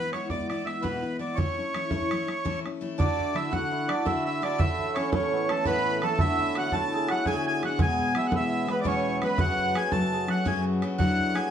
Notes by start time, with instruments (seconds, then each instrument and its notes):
Already playing: steel-string acoustic guitar B3 E4, accordion B4
0.00 steel-string acoustic guitar E3 G#3
0.13 steel-string acoustic guitar E3 G#3 B3 E4, accordion C#5, bodhran
0.30 steel-string acoustic guitar E2 B2 E3 G#3 B3 E4, accordion D5, bodhran
0.40 bodhran
0.49 steel-string acoustic guitar E3 G#3 B3 E4, accordion D5, bodhran
0.64 steel-string acoustic guitar E3 G#3 B3 E4, accordion E5, bodhran
0.82 steel-string acoustic guitar E2 B2 E3 G#3 B3 E4, accordion B4, bodhran
1.02 steel-string acoustic guitar E3 G#3 B3 E4
1.19 steel-string acoustic guitar E3 G#3 B3 E4, accordion D5
1.35 steel-string acoustic guitar A2 E3 A3 C#4 E4, accordion C#5, bodhran
1.57 steel-string acoustic guitar A3 C#4 E4
1.74 steel-string acoustic guitar E3 A3 C#4 E4, bodhran
1.91 steel-string acoustic guitar A2 E3 A3 C#4 E4, bodhran
2.01 bodhran
2.11 steel-string acoustic guitar E3 A3 C#4 E4, bodhran
2.27 steel-string acoustic guitar A3 C#4 E4, bodhran
2.45 steel-string acoustic guitar A2 E3 A3 C#4 E4, bodhran
2.66 steel-string acoustic guitar A3 C#4 E4, bodhran
2.81 steel-string acoustic guitar E3 A3 C#4 E4
2.98 steel-string acoustic guitar D3 A3 E4 F#4, hammered dulcimer D4, accordion D5, bodhran
3.19 bodhran
3.34 steel-string acoustic guitar D3 A3 E4 F#4, hammered dulcimer E4, accordion E5, bodhran
3.51 steel-string acoustic guitar D3 A3 E4 F#4, hammered dulcimer F#4, accordion F#5, bodhran
3.71 hammered dulcimer E4
3.88 steel-string acoustic guitar A3 E4 F#4, hammered dulcimer D4, accordion D5, bodhran
4.03 steel-string acoustic guitar D3 A3 E4 F#4, hammered dulcimer E4 F#4, accordion E5, bodhran
4.25 hammered dulcimer E4, accordion E5
4.42 steel-string acoustic guitar D3 A3 E4 F#4, hammered dulcimer D4, accordion D5, bodhran
4.58 steel-string acoustic guitar A2 E3 A3 C#4 A4, hammered dulcimer E4, accordion E5, bodhran
4.79 bodhran
4.94 steel-string acoustic guitar E3 A3 C#4 A4, hammered dulcimer C#4, accordion C#5, bodhran
5.12 steel-string acoustic guitar A2 E3 A3 C#4 A4, hammered dulcimer C#4, accordion C#5, bodhran
5.33 hammered dulcimer B3
5.49 hammered dulcimer A3, steel-string acoustic guitar A3 C#4 A4, accordion A4, bodhran
5.65 steel-string acoustic guitar A2 E3 A3 C#4 A4, hammered dulcimer B3, accordion B4, bodhran
5.99 steel-string acoustic guitar E3 A3, hammered dulcimer B3, bodhran
6.03 hammered dulcimer A3, steel-string acoustic guitar C#4 A4, accordion A4
6.19 steel-string acoustic guitar D3 A3 E4 F#4, hammered dulcimer E4, accordion E5, bodhran
6.39 hammered dulcimer E4, bodhran
6.55 steel-string acoustic guitar D3 A3 E4 F#4, hammered dulcimer F#4, accordion F#5, bodhran
6.72 steel-string acoustic guitar D3 A3 E4 F#4, hammered dulcimer A4, accordion A5, bodhran
6.93 hammered dulcimer G#4
7.08 steel-string acoustic guitar E4 F#4, hammered dulcimer F#4, accordion F#5, bodhran
7.12 steel-string acoustic guitar A3
7.26 steel-string acoustic guitar D3 A3 E4 F#4, hammered dulcimer G#4, accordion G#5, bodhran
7.47 accordion G#5
7.61 steel-string acoustic guitar D3 A3 E4 F#4, hammered dulcimer F#4, bodhran
7.65 accordion F#5
7.79 steel-string acoustic guitar E2 B2 E3 G#3 B3 G#4, hammered dulcimer G#4, accordion G#5, bodhran
7.99 bodhran
8.15 steel-string acoustic guitar E3 G#3 B3 G#4, hammered dulcimer E4, accordion E5, bodhran
8.27 accordion F#5
8.31 steel-string acoustic guitar E2 B2 E3 G#3 B3 G#4, hammered dulcimer E4, bodhran
8.36 accordion E5
8.67 steel-string acoustic guitar E3 G#3 B3 G#4, hammered dulcimer B3, accordion B4, bodhran
8.80 steel-string acoustic guitar E2 B2 B3, accordion D5
8.85 steel-string acoustic guitar E3 G#3 G#4, hammered dulcimer C#4, accordion C#5, bodhran
9.21 steel-string acoustic guitar E3 G#3 B3 G#4, hammered dulcimer B3, accordion B4, bodhran
9.38 steel-string acoustic guitar F#2 C#3 F#3 A3 C#4 F#4, hammered dulcimer F#4, accordion F#5, bodhran
9.59 bodhran
9.74 steel-string acoustic guitar F#3 A3 C#4 F#4, hammered dulcimer G#4, accordion G#5, bodhran
9.91 steel-string acoustic guitar F#2 C#3 F#3 A3 C#4 F#4, hammered dulcimer A4, accordion A5, bodhran
10.13 hammered dulcimer G#4
10.26 steel-string acoustic guitar F#3 A3 C#4 F#4, hammered dulcimer F#4, accordion F#5, bodhran
10.45 steel-string acoustic guitar F#2 C#3 F#3 A3 C#4 F#4, hammered dulcimer G#4, accordion G#5, bodhran
10.82 steel-string acoustic guitar F#3 A3 C#4 F#4, bodhran
10.98 steel-string acoustic guitar F#3 A3 D4 E4, hammered dulcimer F#4, accordion F#5, bodhran
11.20 bodhran
11.34 steel-string acoustic guitar F#3 A3 D4 E4, hammered dulcimer G#4, accordion G#5, bodhran